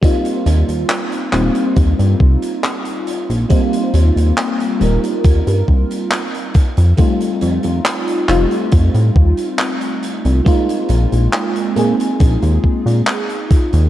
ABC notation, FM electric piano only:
X:1
M:4/4
L:1/8
Q:1/4=69
K:Eb
V:1 name="FM electric piano"
[G,B,CEF]3 [G,B,CEF] z4 | [G,B,CEF]3 [G,B,CEB]4 z | [G,=A,CEF]3 [G,A,CEF] z4 | [A,B,CEF]3 [A,B,CEA]4- [A,B,CEA] |]